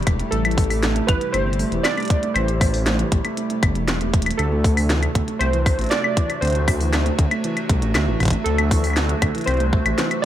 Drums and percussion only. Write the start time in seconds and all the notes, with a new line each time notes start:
0.03 closed hi-hat
0.07 kick, closed hi-hat, claves
0.20 closed hi-hat
0.32 closed hi-hat
0.45 closed hi-hat, claves
0.51 closed hi-hat
0.58 kick, closed hi-hat, open hi-hat
0.64 closed hi-hat
0.70 open hi-hat, claves
0.83 snare, closed hi-hat
0.96 closed hi-hat
1.08 kick, closed hi-hat, claves
1.21 closed hi-hat
1.34 closed hi-hat, claves
1.53 closed hi-hat
1.59 open hi-hat
1.72 closed hi-hat
1.85 snare, closed hi-hat, claves
1.98 closed hi-hat, claves
2.00 closed hi-hat
2.03 closed hi-hat
2.05 closed hi-hat
2.08 kick, closed hi-hat
2.10 closed hi-hat
2.23 closed hi-hat
2.36 closed hi-hat, claves
2.48 closed hi-hat
2.61 kick, open hi-hat, claves
2.74 open hi-hat
2.86 snare, closed hi-hat
2.99 closed hi-hat
3.12 kick, closed hi-hat
3.25 closed hi-hat, claves
3.37 closed hi-hat
3.50 closed hi-hat
3.63 kick, closed hi-hat, claves
3.75 closed hi-hat
3.88 snare, closed hi-hat
4.01 closed hi-hat
4.14 kick, closed hi-hat
4.22 closed hi-hat
4.26 closed hi-hat, claves
4.31 closed hi-hat
4.39 closed hi-hat, claves
4.64 kick, open hi-hat
4.77 open hi-hat, claves
4.90 snare, closed hi-hat
5.03 closed hi-hat, claves
5.15 kick, closed hi-hat
5.28 closed hi-hat
5.41 closed hi-hat, claves
5.53 closed hi-hat
5.66 kick, open hi-hat, claves
5.79 closed hi-hat
5.81 closed hi-hat
5.84 closed hi-hat
5.86 closed hi-hat
5.89 snare, closed hi-hat
5.92 closed hi-hat
6.04 claves
6.17 kick, closed hi-hat
6.30 closed hi-hat, claves
6.42 closed hi-hat
6.45 closed hi-hat
6.47 closed hi-hat
6.50 closed hi-hat
6.53 closed hi-hat
6.55 closed hi-hat
6.68 kick, open hi-hat, claves
6.81 open hi-hat
6.93 snare, closed hi-hat, claves
7.06 closed hi-hat
7.19 kick, closed hi-hat
7.31 closed hi-hat, claves
7.44 closed hi-hat
7.57 closed hi-hat, claves
7.69 kick, closed hi-hat
7.82 closed hi-hat
7.95 snare, closed hi-hat, claves
8.20 kick, closed hi-hat, claves
8.23 kick, closed hi-hat
8.25 kick, closed hi-hat
8.28 kick, closed hi-hat
8.30 kick, closed hi-hat
8.46 closed hi-hat
8.58 closed hi-hat, claves
8.71 kick, open hi-hat
8.84 open hi-hat, claves
8.87 claves
8.90 claves
8.93 snare, closed hi-hat, claves
9.09 closed hi-hat
9.22 kick, closed hi-hat, claves
9.35 closed hi-hat
9.38 closed hi-hat
9.41 closed hi-hat
9.44 closed hi-hat
9.48 closed hi-hat, claves
9.54 closed hi-hat
9.57 closed hi-hat
9.60 closed hi-hat
9.73 kick
9.86 closed hi-hat, claves
9.98 snare, closed hi-hat
10.11 closed hi-hat, claves